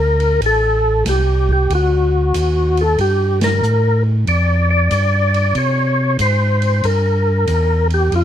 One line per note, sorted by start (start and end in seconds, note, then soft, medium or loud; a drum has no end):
0.00 0.40 D2 medium
0.00 0.41 A#4 loud
0.20 ride soft
0.41 1.04 A1 medium
0.41 kick soft
0.41 ride medium
0.46 1.04 A4 medium
1.05 1.68 C2 medium
1.05 1.51 G4 medium
1.05 kick soft
1.05 snare soft
1.05 hi-hat pedal medium
1.05 ride medium
1.49 1.73 G4 medium
1.49 kick medium
1.70 2.33 D2 medium
1.70 kick soft
1.70 ride medium
1.75 2.83 F#4 medium
2.34 2.97 D#2 medium
2.34 kick soft
2.34 hi-hat pedal medium
2.34 ride medium
2.77 2.99 A4 medium
2.77 ride soft
2.98 3.61 G2 medium
2.98 3.40 G4 medium
2.98 kick soft
2.98 ride medium
3.41 4.03 A#4 medium
3.41 snare medium
3.41 ride medium
3.63 4.25 A2 medium
3.63 hi-hat pedal medium
4.27 4.89 F2 medium
4.27 4.69 D5 medium
4.27 kick soft
4.27 ride medium
4.70 5.58 D5 loud
4.91 5.54 G2 medium
4.91 kick soft
4.91 hi-hat pedal soft
4.91 ride medium
5.34 ride soft
5.55 6.18 C3 medium
5.55 6.17 C#5 loud
5.55 kick soft
5.55 ride medium
6.19 6.82 G#2 medium
6.19 6.87 C5 medium
6.19 kick soft
6.19 hi-hat pedal medium
6.19 ride medium
6.62 ride soft
6.83 7.46 G2 medium
6.83 7.88 A#4 medium
6.83 kick soft
6.83 ride medium
7.47 8.10 E2 medium
7.47 kick soft
7.47 hi-hat pedal medium
7.47 ride medium
7.90 8.14 G4 medium
7.90 ride soft
8.12 8.24 F2 medium
8.12 8.24 F4 medium
8.12 kick soft
8.12 ride medium